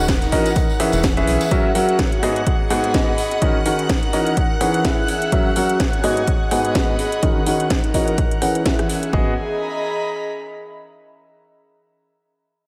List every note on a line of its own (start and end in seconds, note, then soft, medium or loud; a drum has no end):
0.00 0.28 D#1 medium
0.00 0.56 D#4 medium
0.00 0.95 A#4 medium
0.00 0.56 D#5 medium
0.00 1.50 F#5 medium
0.00 1.50 F#6 medium
0.04 0.95 F#5 medium
0.08 kick loud
0.08 snare loud
0.08 closed hi-hat medium
0.08 tambourine medium
0.22 snare soft
0.22 closed hi-hat soft
0.22 tambourine soft
0.32 0.48 E3 medium
0.32 0.48 C#4 medium
0.32 0.48 F#4 medium
0.32 0.48 A#4 medium
0.32 0.48 D#5 medium
0.32 kick medium
0.32 closed hi-hat medium
0.32 open hi-hat medium
0.46 closed hi-hat soft
0.46 tambourine medium
0.56 1.80 C#4 medium
0.56 kick loud
0.56 closed hi-hat medium
0.56 tambourine medium
0.70 tambourine soft
0.76 1.03 E3 medium
0.76 1.03 C#4 medium
0.76 1.80 G#4 medium
0.76 1.03 G#4 medium
0.76 1.03 B4 medium
0.76 1.03 E5 medium
0.76 cross-stick medium
0.76 closed hi-hat medium
0.76 open hi-hat loud
0.92 1.23 E1 loud
0.92 closed hi-hat soft
0.92 tambourine medium
0.99 1.80 E5 medium
0.99 closed hi-hat medium
1.04 kick loud
1.04 snare loud
1.04 closed hi-hat medium
1.04 tambourine medium
1.17 1.40 E3 medium
1.17 1.40 C#4 medium
1.17 1.40 G#4 medium
1.17 1.40 B4 medium
1.17 1.40 E5 loud
1.17 closed hi-hat soft
1.17 tambourine soft
1.27 1.38 B1 medium
1.27 closed hi-hat medium
1.27 open hi-hat medium
1.40 snare medium
1.40 closed hi-hat medium
1.40 tambourine medium
1.51 1.67 F#3 medium
1.51 1.67 C#4 medium
1.51 2.70 F#4 medium
1.51 1.67 F#4 medium
1.51 1.67 A#4 medium
1.51 1.67 E5 loud
1.51 9.14 F#5 medium
1.51 9.14 F#6 medium
1.51 kick loud
1.51 closed hi-hat medium
1.59 2.70 C#5 medium
1.75 1.98 F#3 medium
1.75 1.98 C#4 medium
1.75 1.98 F#4 medium
1.75 1.98 A#4 medium
1.75 1.98 F#5 medium
1.75 open hi-hat loud
1.83 2.70 G#5 medium
1.83 2.23 A#5 medium
1.89 closed hi-hat medium
1.99 kick loud
1.99 snare loud
1.99 closed hi-hat medium
2.12 closed hi-hat soft
2.23 2.38 G#2 medium
2.23 2.38 B3 medium
2.23 2.38 F#4 medium
2.23 3.81 G#4 medium
2.23 2.38 G#4 medium
2.23 2.38 D#5 medium
2.23 cross-stick medium
2.23 open hi-hat medium
2.36 4.37 D#5 medium
2.36 closed hi-hat soft
2.47 kick loud
2.47 closed hi-hat medium
2.61 3.42 B5 medium
2.70 2.91 G#2 medium
2.70 2.91 B3 medium
2.70 2.91 F#4 medium
2.70 2.91 G#4 medium
2.70 2.91 F#5 medium
2.70 cross-stick medium
2.70 open hi-hat loud
2.84 closed hi-hat soft
2.94 3.10 G#2 medium
2.94 3.10 B3 medium
2.94 3.10 F#4 medium
2.94 3.10 G#4 medium
2.94 3.10 D#5 medium
2.94 kick loud
2.94 snare loud
2.94 closed hi-hat medium
3.18 open hi-hat medium
3.31 closed hi-hat soft
3.42 3.57 D#3 medium
3.42 3.57 C#4 medium
3.42 4.37 D#4 medium
3.42 3.57 F#4 medium
3.42 3.57 A#4 medium
3.42 3.57 D#5 loud
3.42 kick loud
3.42 closed hi-hat medium
3.50 4.76 A#4 medium
3.66 3.89 D#3 medium
3.66 3.89 C#4 medium
3.66 3.89 F#4 medium
3.66 3.89 A#4 medium
3.66 3.89 F#5 medium
3.66 open hi-hat loud
3.79 closed hi-hat medium
3.85 4.76 F#5 medium
3.89 kick loud
3.89 snare loud
3.89 closed hi-hat medium
4.03 closed hi-hat soft
4.13 4.29 E3 medium
4.13 4.29 C#4 medium
4.13 4.29 F#4 medium
4.13 4.29 A#4 medium
4.13 4.29 D#5 medium
4.13 open hi-hat medium
4.27 closed hi-hat soft
4.37 5.32 E3 medium
4.37 kick loud
4.37 closed hi-hat medium
4.45 5.61 C#4 medium
4.61 4.82 E3 medium
4.61 4.82 C#4 medium
4.61 4.82 G#4 medium
4.61 4.82 B4 medium
4.61 4.82 F#5 medium
4.61 cross-stick medium
4.61 open hi-hat loud
4.74 5.61 G#4 medium
4.74 closed hi-hat medium
4.80 5.61 E5 medium
4.85 5.00 E3 medium
4.85 5.00 C#4 medium
4.85 5.00 B4 medium
4.85 5.00 E5 medium
4.85 kick loud
4.85 snare loud
4.85 closed hi-hat medium
5.08 open hi-hat medium
5.22 closed hi-hat medium
5.32 5.48 F#3 loud
5.32 5.48 C#4 medium
5.32 5.48 F#4 medium
5.32 6.51 F#4 medium
5.32 5.48 A#4 medium
5.32 5.48 E5 loud
5.32 kick loud
5.32 closed hi-hat medium
5.40 6.51 C#5 medium
5.50 6.51 G#5 medium
5.56 5.79 F#3 medium
5.56 5.79 C#4 medium
5.56 5.79 F#4 medium
5.56 5.79 A#4 medium
5.56 5.79 F#5 medium
5.56 open hi-hat loud
5.65 6.04 A#5 medium
5.69 closed hi-hat medium
5.80 kick loud
5.80 snare loud
5.80 closed hi-hat medium
5.93 closed hi-hat soft
6.04 6.19 G#2 medium
6.04 6.19 B3 medium
6.04 6.19 F#4 medium
6.04 7.62 G#4 medium
6.04 6.19 G#4 medium
6.04 6.19 D#5 loud
6.04 cross-stick medium
6.04 open hi-hat medium
6.17 8.18 D#5 loud
6.17 closed hi-hat medium
6.27 kick loud
6.27 closed hi-hat medium
6.48 6.72 G#2 medium
6.48 6.72 B3 medium
6.48 6.72 F#4 medium
6.48 6.72 G#4 medium
6.48 6.72 F#5 medium
6.48 7.23 B5 medium
6.48 cross-stick medium
6.48 open hi-hat loud
6.65 closed hi-hat medium
6.75 6.91 G#2 medium
6.75 6.91 B3 medium
6.75 6.91 F#4 medium
6.75 6.91 D#5 medium
6.75 kick loud
6.75 snare loud
6.75 closed hi-hat medium
6.99 open hi-hat medium
7.12 closed hi-hat medium
7.23 7.38 D#3 loud
7.23 7.38 C#4 medium
7.23 8.18 D#4 medium
7.23 7.38 F#4 medium
7.23 7.38 A#4 medium
7.23 7.38 D#5 loud
7.23 kick loud
7.23 closed hi-hat medium
7.46 7.70 D#3 medium
7.46 7.70 C#4 medium
7.46 7.70 F#4 medium
7.46 7.70 A#4 medium
7.46 8.57 A#4 medium
7.46 7.70 F#5 medium
7.46 open hi-hat loud
7.60 closed hi-hat medium
7.66 8.57 F#5 medium
7.66 closed hi-hat medium
7.70 kick loud
7.70 snare loud
7.84 closed hi-hat soft
7.94 8.10 E3 medium
7.94 8.10 C#4 medium
7.94 8.10 F#4 medium
7.94 8.10 A#4 medium
7.94 8.10 D#5 medium
7.94 kick medium
7.94 open hi-hat medium
8.08 closed hi-hat medium
8.18 9.13 E3 medium
8.18 kick loud
8.18 closed hi-hat medium
8.31 closed hi-hat soft
8.42 8.62 E3 medium
8.42 8.62 C#4 medium
8.42 9.13 C#4 medium
8.42 8.62 G#4 medium
8.42 8.62 B4 medium
8.42 8.62 F#5 medium
8.42 cross-stick medium
8.42 open hi-hat loud
8.55 closed hi-hat medium
8.61 9.12 G#4 medium
8.61 9.13 E5 medium
8.66 8.81 E3 medium
8.66 8.81 G#4 medium
8.66 8.81 B4 medium
8.66 8.81 E5 medium
8.66 kick loud
8.66 snare loud
8.66 closed hi-hat medium
8.79 cross-stick medium
8.79 closed hi-hat soft
8.89 open hi-hat medium
9.03 closed hi-hat medium
9.13 9.35 G#1 loud
9.13 9.32 B3 medium
9.13 9.31 F#4 medium
9.13 9.32 G#4 medium
9.13 11.00 G#4 medium
9.13 9.31 D#5 medium
9.13 kick loud
9.22 11.00 D#5 medium
9.29 11.00 A#5 medium
9.35 11.00 B5 medium